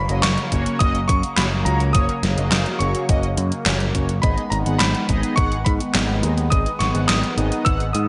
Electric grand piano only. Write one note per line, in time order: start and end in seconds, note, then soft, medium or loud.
0.00 0.24 B5 medium
0.22 0.82 C#6 loud
0.79 1.06 D#6 loud
1.08 1.38 C#6 loud
1.36 1.43 B5 loud
1.65 1.92 A#5 medium
1.93 2.82 D#6 loud
2.79 3.90 C#6 medium
4.22 4.52 B5 medium
4.50 4.57 A#5 medium
4.79 5.38 B5 loud
5.36 5.66 C#6 loud
5.65 5.71 B5 medium
6.50 6.78 D#6 loud
6.79 7.06 C#6 medium
7.08 7.67 D#6 loud
7.65 7.71 E6 loud
7.93 8.00 D#6 medium